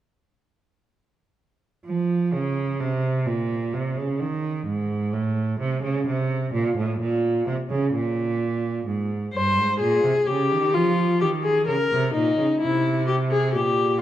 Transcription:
1.86 cello F3
2.33 cello C#3
2.80 cello C3
3.26 cello A#2
3.73 cello C3
3.96 cello C#3
4.20 cello D#3
4.66 cello G#2
5.13 cello A2
5.60 cello C3
5.82 cello C#3
6.06 cello C3
6.53 cello A#2
6.77 cello A2
6.99 cello A#2
7.46 cello C3
7.70 cello C#3
7.93 cello A#2
8.87 cello G#2
9.34 cello G2, viola C5
9.57 cello G#2
9.80 cello A#2, viola G#4
10.03 cello C3
10.27 cello C#3, viola G4
10.51 cello D#3
10.74 cello F3, viola F4
11.21 cello D#3, viola G4
11.43 viola G#4
11.67 cello C#3, viola A#4
11.92 cello C3
12.14 cello A#2, viola D#4
12.37 cello C#3
12.61 cello C3, viola E4
13.07 viola G4
13.31 viola G#4
13.54 cello A#2, viola G4

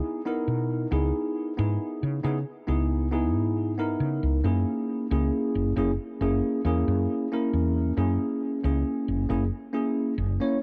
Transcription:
Already playing: tine electric piano B3 D#4 E4 G#4
0.26 tine electric piano B3 D#4 E4 A#4
0.48 fretless electric bass B2
0.91 fretless electric bass C#2, tine electric piano B3 D#4 E4 G#4
1.57 fretless electric bass G#2, tine electric piano B3 D#4 E4 G#4
2.03 fretless electric bass C#3
2.23 fretless electric bass C#3, tine electric piano B3 D#4 E4 G#4
2.67 fretless electric bass C#2, tine electric piano B3 D#4 E4 G#4
3.11 tine electric piano B3 D#4 E4 G#4
3.35 fretless electric bass G#2
3.78 tine electric piano B3 D#4 E4 A#4
4.00 fretless electric bass C#3
4.23 fretless electric bass C#2
4.44 fretless electric bass F#2, tine electric piano A#3 C#4 E4 G#4
5.11 fretless electric bass C#2, tine electric piano A#3 C#4 E4 G#4
5.55 fretless electric bass F#1
5.76 fretless electric bass F#1, tine electric piano A#3 C#4 E4 G#4
6.21 fretless electric bass F#1, tine electric piano A#3 C#4 E4 G#4
6.65 fretless electric bass E2, tine electric piano A#3 C#4 E4 G#4
6.88 fretless electric bass F#2
7.32 tine electric piano A#3 C#4 E4 A#4
7.53 fretless electric bass E2
7.97 fretless electric bass F#2, tine electric piano A#3 C#4 E4 G#4
8.64 fretless electric bass C#2, tine electric piano A#3 C#4 E4 G#4
9.08 fretless electric bass F#1
9.29 fretless electric bass F#1, tine electric piano A#3 C#4 E4 G#4
9.73 tine electric piano A#3 C#4 E4 G#4
10.18 fretless electric bass F#1
10.40 tine electric piano A#3 C#4 E4 C#5

